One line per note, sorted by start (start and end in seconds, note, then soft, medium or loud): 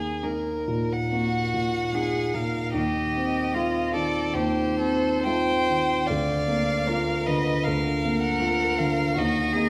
0.00 1.09 D#2 soft
0.00 0.51 A#3 soft
0.00 0.25 G#4 soft
0.23 0.93 A#3 soft
0.23 0.97 D#4 soft
0.23 0.94 A#4 soft
0.68 1.38 A#2 soft
0.93 2.36 F#5 medium
1.12 1.78 A#3 soft
1.12 1.96 F#4 soft
1.54 2.18 A#2 soft
1.93 2.54 A#3 soft
1.93 2.58 D#4 soft
1.93 2.35 G#4 soft
2.34 2.75 A#2 soft
2.34 2.73 A#4 soft
2.34 2.74 F5 soft
2.74 4.31 D#2 soft
2.74 3.56 G4 soft
2.74 3.93 D#5 medium
3.16 3.80 C4 soft
3.54 4.15 A3 soft
3.54 3.94 F4 soft
3.54 4.19 F4 soft
3.93 4.62 D#3 soft
3.93 4.35 A4 soft
3.93 4.37 D5 medium
4.34 6.03 D#2 soft
4.34 4.79 G4 soft
4.34 5.25 C5 medium
4.79 5.51 C4 soft
4.79 5.23 A4 soft
5.23 5.88 A3 soft
5.23 5.92 F4 soft
5.23 6.08 C5 soft
5.23 6.09 G5 medium
5.69 6.09 D#3 soft
6.07 7.63 D2 soft
6.07 6.89 D5 soft
6.07 7.28 F5 medium
6.48 7.11 A#3 soft
6.87 7.46 A#3 soft
6.87 7.51 F4 soft
6.87 7.28 A#4 soft
7.26 7.89 D3 soft
7.26 7.67 B4 soft
7.26 7.66 D#5 medium
7.64 9.13 D2 soft
7.64 9.14 A#4 medium
7.64 8.21 F5 medium
8.05 8.64 A#3 soft
8.22 8.80 F#5 medium
8.41 8.97 A#3 soft
8.41 9.01 F4 soft
8.78 9.17 D3 soft
8.78 9.21 F5 medium
9.15 9.69 D#2 soft
9.15 9.54 F#4 soft
9.19 9.69 D#5 medium
9.53 9.69 A#3 soft
9.53 9.69 G#4 soft